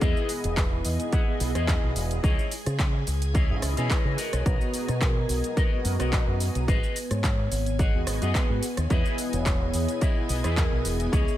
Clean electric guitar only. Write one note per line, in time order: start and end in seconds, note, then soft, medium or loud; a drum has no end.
0.00 0.29 E4 loud
0.00 0.29 G#4 loud
0.00 0.29 B4 loud
0.00 0.30 D#5 loud
0.71 muted clean electric guitar stroke medium
0.84 muted clean electric guitar stroke soft
1.12 1.33 E4 loud
1.12 1.34 G#4 medium
1.12 1.34 B4 medium
1.12 1.34 F#5 loud
1.54 1.89 E4 medium
1.54 1.89 G#4 medium
1.54 1.90 B4 medium
1.54 1.90 D#5 loud
2.23 2.51 E4 loud
2.23 2.51 G#4 loud
2.23 2.52 C#5 loud
2.23 2.52 D#5 loud
2.80 muted clean electric guitar stroke soft
2.93 muted clean electric guitar stroke medium
3.06 muted clean electric guitar stroke soft
3.34 3.56 E4 medium
3.34 3.56 G#4 medium
3.34 3.56 C#5 medium
3.34 3.57 D#5 loud
3.76 4.11 E4 medium
3.76 4.12 G#4 medium
3.76 4.12 C#5 medium
3.76 4.12 D#5 loud
4.17 4.85 F#4 loud
4.17 4.85 A#4 medium
4.17 4.86 B4 medium
4.17 4.86 D#5 loud
5.00 muted clean electric guitar stroke soft
5.15 muted clean electric guitar stroke medium
5.28 muted clean electric guitar stroke soft
5.56 5.78 F#4 medium
5.56 5.78 A#4 medium
5.56 5.78 B4 medium
5.56 5.79 D#5 loud
5.99 6.33 F#4 medium
5.99 6.34 A#4 medium
5.99 6.34 B4 medium
5.99 6.34 D#5 loud
6.67 6.96 F#4 loud
6.67 6.96 G#4 loud
6.67 6.96 B4 loud
6.67 6.97 D#5 loud
7.23 muted clean electric guitar stroke soft
7.38 muted clean electric guitar stroke medium
7.51 muted clean electric guitar stroke soft
7.79 8.00 F#4 medium
7.79 8.01 G#4 medium
7.79 8.01 B4 medium
7.79 8.01 F#5 loud
8.21 8.56 F#4 medium
8.21 8.56 G#4 medium
8.21 8.56 B4 medium
8.21 8.57 D#5 loud
8.89 9.18 E4 loud
8.89 9.18 G#4 loud
8.89 9.18 B4 loud
8.89 9.19 D#5 loud
9.45 muted clean electric guitar stroke soft
9.60 muted clean electric guitar stroke medium
9.73 muted clean electric guitar stroke soft
10.00 10.22 E4 medium
10.00 10.23 G#4 medium
10.00 10.23 B4 medium
10.00 10.23 D#5 loud
10.43 10.78 E4 medium
10.43 10.78 G#4 medium
10.43 10.79 B4 medium
10.43 10.79 D#5 loud
11.12 11.37 E4 loud
11.12 11.37 G#4 loud
11.12 11.37 C#5 loud
11.12 11.37 D#5 loud